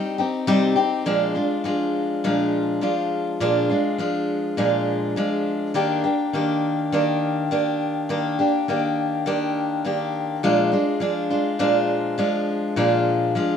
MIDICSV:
0, 0, Header, 1, 2, 480
1, 0, Start_track
1, 0, Tempo, 584795
1, 882, Time_signature, 4, 2, 24, 8
1, 11137, End_track
2, 0, Start_track
2, 0, Title_t, "Steel-string acoustic guitar"
2, 0, Program_c, 0, 25
2, 0, Note_on_c, 0, 55, 56
2, 0, Note_on_c, 0, 60, 57
2, 0, Note_on_c, 0, 63, 66
2, 0, Note_on_c, 0, 67, 65
2, 140, Note_off_c, 0, 67, 0
2, 150, Note_off_c, 0, 63, 0
2, 150, Note_on_c, 0, 67, 56
2, 157, Note_off_c, 0, 60, 0
2, 158, Note_off_c, 0, 55, 0
2, 159, Note_on_c, 0, 63, 58
2, 167, Note_on_c, 0, 60, 52
2, 383, Note_off_c, 0, 60, 0
2, 384, Note_off_c, 0, 63, 0
2, 385, Note_off_c, 0, 67, 0
2, 388, Note_on_c, 0, 48, 86
2, 389, Note_on_c, 0, 55, 82
2, 393, Note_on_c, 0, 60, 83
2, 394, Note_on_c, 0, 63, 98
2, 395, Note_on_c, 0, 67, 97
2, 612, Note_off_c, 0, 67, 0
2, 622, Note_on_c, 0, 67, 60
2, 623, Note_off_c, 0, 63, 0
2, 627, Note_off_c, 0, 60, 0
2, 633, Note_on_c, 0, 63, 57
2, 635, Note_off_c, 0, 48, 0
2, 635, Note_off_c, 0, 55, 0
2, 637, Note_on_c, 0, 60, 47
2, 868, Note_on_c, 0, 46, 65
2, 870, Note_off_c, 0, 60, 0
2, 871, Note_on_c, 0, 53, 74
2, 872, Note_off_c, 0, 63, 0
2, 872, Note_off_c, 0, 67, 0
2, 873, Note_on_c, 0, 56, 70
2, 875, Note_on_c, 0, 62, 70
2, 877, Note_on_c, 0, 65, 71
2, 1097, Note_off_c, 0, 65, 0
2, 1104, Note_off_c, 0, 62, 0
2, 1107, Note_on_c, 0, 65, 43
2, 1113, Note_off_c, 0, 56, 0
2, 1114, Note_on_c, 0, 62, 44
2, 1115, Note_off_c, 0, 46, 0
2, 1116, Note_off_c, 0, 53, 0
2, 1122, Note_on_c, 0, 56, 36
2, 1345, Note_off_c, 0, 62, 0
2, 1346, Note_off_c, 0, 56, 0
2, 1346, Note_on_c, 0, 53, 53
2, 1354, Note_off_c, 0, 65, 0
2, 1355, Note_on_c, 0, 62, 68
2, 1356, Note_on_c, 0, 56, 68
2, 1363, Note_on_c, 0, 65, 65
2, 1832, Note_off_c, 0, 53, 0
2, 1832, Note_off_c, 0, 56, 0
2, 1836, Note_off_c, 0, 65, 0
2, 1838, Note_on_c, 0, 46, 63
2, 1841, Note_on_c, 0, 56, 66
2, 1842, Note_off_c, 0, 62, 0
2, 1842, Note_on_c, 0, 53, 78
2, 1845, Note_on_c, 0, 62, 83
2, 1846, Note_on_c, 0, 65, 76
2, 2300, Note_off_c, 0, 53, 0
2, 2305, Note_off_c, 0, 56, 0
2, 2309, Note_on_c, 0, 53, 56
2, 2312, Note_off_c, 0, 65, 0
2, 2315, Note_off_c, 0, 62, 0
2, 2315, Note_on_c, 0, 56, 52
2, 2318, Note_on_c, 0, 62, 62
2, 2320, Note_off_c, 0, 46, 0
2, 2322, Note_on_c, 0, 65, 72
2, 2787, Note_off_c, 0, 53, 0
2, 2790, Note_off_c, 0, 56, 0
2, 2794, Note_on_c, 0, 46, 70
2, 2796, Note_off_c, 0, 65, 0
2, 2797, Note_on_c, 0, 53, 80
2, 2800, Note_on_c, 0, 56, 76
2, 2801, Note_off_c, 0, 62, 0
2, 2804, Note_on_c, 0, 62, 88
2, 2806, Note_on_c, 0, 65, 72
2, 3023, Note_off_c, 0, 65, 0
2, 3032, Note_off_c, 0, 62, 0
2, 3033, Note_on_c, 0, 65, 44
2, 3038, Note_off_c, 0, 46, 0
2, 3039, Note_off_c, 0, 56, 0
2, 3040, Note_off_c, 0, 53, 0
2, 3042, Note_on_c, 0, 62, 42
2, 3049, Note_on_c, 0, 56, 41
2, 3266, Note_off_c, 0, 56, 0
2, 3269, Note_off_c, 0, 62, 0
2, 3270, Note_on_c, 0, 53, 58
2, 3275, Note_off_c, 0, 65, 0
2, 3276, Note_on_c, 0, 56, 62
2, 3279, Note_on_c, 0, 62, 60
2, 3285, Note_on_c, 0, 65, 74
2, 3746, Note_off_c, 0, 53, 0
2, 3749, Note_off_c, 0, 56, 0
2, 3752, Note_on_c, 0, 46, 70
2, 3753, Note_off_c, 0, 65, 0
2, 3755, Note_off_c, 0, 62, 0
2, 3756, Note_on_c, 0, 53, 66
2, 3759, Note_on_c, 0, 56, 82
2, 3759, Note_on_c, 0, 62, 75
2, 3763, Note_on_c, 0, 65, 73
2, 4227, Note_off_c, 0, 53, 0
2, 4236, Note_off_c, 0, 56, 0
2, 4237, Note_off_c, 0, 46, 0
2, 4237, Note_on_c, 0, 53, 60
2, 4242, Note_off_c, 0, 62, 0
2, 4243, Note_off_c, 0, 65, 0
2, 4246, Note_on_c, 0, 56, 68
2, 4246, Note_on_c, 0, 62, 67
2, 4252, Note_on_c, 0, 65, 66
2, 4710, Note_off_c, 0, 53, 0
2, 4713, Note_on_c, 0, 51, 72
2, 4716, Note_off_c, 0, 56, 0
2, 4717, Note_off_c, 0, 62, 0
2, 4720, Note_on_c, 0, 58, 81
2, 4720, Note_on_c, 0, 62, 79
2, 4721, Note_off_c, 0, 65, 0
2, 4725, Note_on_c, 0, 67, 80
2, 4945, Note_off_c, 0, 67, 0
2, 4953, Note_off_c, 0, 62, 0
2, 4955, Note_on_c, 0, 67, 49
2, 4958, Note_off_c, 0, 51, 0
2, 4961, Note_off_c, 0, 58, 0
2, 4963, Note_on_c, 0, 62, 40
2, 4972, Note_on_c, 0, 58, 37
2, 5194, Note_off_c, 0, 58, 0
2, 5199, Note_off_c, 0, 67, 0
2, 5199, Note_on_c, 0, 51, 58
2, 5201, Note_off_c, 0, 62, 0
2, 5203, Note_on_c, 0, 58, 60
2, 5211, Note_on_c, 0, 62, 70
2, 5214, Note_on_c, 0, 67, 70
2, 5674, Note_off_c, 0, 51, 0
2, 5684, Note_on_c, 0, 51, 77
2, 5687, Note_off_c, 0, 58, 0
2, 5688, Note_off_c, 0, 67, 0
2, 5690, Note_on_c, 0, 58, 67
2, 5691, Note_off_c, 0, 62, 0
2, 5695, Note_on_c, 0, 62, 78
2, 5697, Note_on_c, 0, 67, 71
2, 6154, Note_off_c, 0, 51, 0
2, 6164, Note_on_c, 0, 51, 66
2, 6168, Note_off_c, 0, 58, 0
2, 6169, Note_off_c, 0, 62, 0
2, 6170, Note_off_c, 0, 67, 0
2, 6171, Note_on_c, 0, 58, 60
2, 6173, Note_on_c, 0, 62, 69
2, 6179, Note_on_c, 0, 67, 68
2, 6632, Note_off_c, 0, 51, 0
2, 6642, Note_on_c, 0, 51, 70
2, 6643, Note_off_c, 0, 67, 0
2, 6646, Note_off_c, 0, 58, 0
2, 6646, Note_off_c, 0, 62, 0
2, 6649, Note_on_c, 0, 58, 75
2, 6650, Note_on_c, 0, 62, 75
2, 6652, Note_on_c, 0, 67, 75
2, 6875, Note_off_c, 0, 67, 0
2, 6882, Note_off_c, 0, 51, 0
2, 6883, Note_off_c, 0, 62, 0
2, 6885, Note_off_c, 0, 58, 0
2, 6885, Note_on_c, 0, 67, 50
2, 6893, Note_on_c, 0, 62, 48
2, 6900, Note_on_c, 0, 58, 41
2, 7121, Note_off_c, 0, 58, 0
2, 7123, Note_off_c, 0, 67, 0
2, 7126, Note_on_c, 0, 51, 57
2, 7127, Note_off_c, 0, 62, 0
2, 7131, Note_on_c, 0, 58, 66
2, 7140, Note_on_c, 0, 62, 63
2, 7142, Note_on_c, 0, 67, 62
2, 7590, Note_off_c, 0, 51, 0
2, 7600, Note_on_c, 0, 51, 76
2, 7602, Note_off_c, 0, 67, 0
2, 7604, Note_off_c, 0, 58, 0
2, 7607, Note_off_c, 0, 62, 0
2, 7607, Note_on_c, 0, 58, 77
2, 7611, Note_on_c, 0, 62, 80
2, 7612, Note_on_c, 0, 67, 83
2, 8072, Note_off_c, 0, 51, 0
2, 8081, Note_on_c, 0, 51, 55
2, 8083, Note_off_c, 0, 58, 0
2, 8086, Note_on_c, 0, 58, 61
2, 8087, Note_off_c, 0, 67, 0
2, 8091, Note_off_c, 0, 62, 0
2, 8094, Note_on_c, 0, 62, 59
2, 8097, Note_on_c, 0, 67, 67
2, 8562, Note_off_c, 0, 51, 0
2, 8562, Note_on_c, 0, 46, 65
2, 8564, Note_off_c, 0, 58, 0
2, 8567, Note_on_c, 0, 53, 88
2, 8567, Note_on_c, 0, 56, 76
2, 8568, Note_off_c, 0, 67, 0
2, 8569, Note_off_c, 0, 62, 0
2, 8572, Note_on_c, 0, 62, 73
2, 8572, Note_on_c, 0, 65, 85
2, 8786, Note_off_c, 0, 65, 0
2, 8796, Note_off_c, 0, 62, 0
2, 8796, Note_on_c, 0, 65, 48
2, 8800, Note_off_c, 0, 56, 0
2, 8802, Note_off_c, 0, 46, 0
2, 8805, Note_off_c, 0, 53, 0
2, 8806, Note_on_c, 0, 62, 45
2, 8809, Note_on_c, 0, 56, 44
2, 9027, Note_off_c, 0, 56, 0
2, 9030, Note_on_c, 0, 53, 55
2, 9031, Note_off_c, 0, 62, 0
2, 9037, Note_off_c, 0, 65, 0
2, 9037, Note_on_c, 0, 56, 60
2, 9041, Note_on_c, 0, 62, 68
2, 9046, Note_on_c, 0, 65, 73
2, 9269, Note_off_c, 0, 65, 0
2, 9274, Note_off_c, 0, 62, 0
2, 9276, Note_off_c, 0, 53, 0
2, 9279, Note_on_c, 0, 65, 51
2, 9280, Note_off_c, 0, 56, 0
2, 9284, Note_on_c, 0, 62, 51
2, 9293, Note_on_c, 0, 56, 45
2, 9509, Note_off_c, 0, 56, 0
2, 9509, Note_off_c, 0, 62, 0
2, 9511, Note_off_c, 0, 65, 0
2, 9513, Note_on_c, 0, 46, 66
2, 9516, Note_on_c, 0, 53, 83
2, 9519, Note_on_c, 0, 56, 77
2, 9519, Note_on_c, 0, 62, 79
2, 9521, Note_on_c, 0, 65, 87
2, 9991, Note_off_c, 0, 53, 0
2, 9995, Note_on_c, 0, 53, 67
2, 9998, Note_off_c, 0, 46, 0
2, 9998, Note_off_c, 0, 56, 0
2, 10000, Note_off_c, 0, 62, 0
2, 10001, Note_on_c, 0, 56, 73
2, 10004, Note_on_c, 0, 62, 62
2, 10006, Note_off_c, 0, 65, 0
2, 10010, Note_on_c, 0, 65, 72
2, 10476, Note_on_c, 0, 46, 81
2, 10477, Note_off_c, 0, 53, 0
2, 10480, Note_off_c, 0, 56, 0
2, 10481, Note_off_c, 0, 62, 0
2, 10481, Note_on_c, 0, 53, 81
2, 10483, Note_off_c, 0, 65, 0
2, 10483, Note_on_c, 0, 56, 76
2, 10485, Note_on_c, 0, 62, 76
2, 10486, Note_on_c, 0, 65, 78
2, 10955, Note_off_c, 0, 53, 0
2, 10958, Note_on_c, 0, 53, 69
2, 10961, Note_off_c, 0, 46, 0
2, 10962, Note_off_c, 0, 56, 0
2, 10965, Note_on_c, 0, 56, 63
2, 10969, Note_off_c, 0, 62, 0
2, 10970, Note_off_c, 0, 65, 0
2, 10972, Note_on_c, 0, 62, 69
2, 10973, Note_on_c, 0, 65, 76
2, 11137, Note_off_c, 0, 53, 0
2, 11137, Note_off_c, 0, 56, 0
2, 11137, Note_off_c, 0, 62, 0
2, 11137, Note_off_c, 0, 65, 0
2, 11137, End_track
0, 0, End_of_file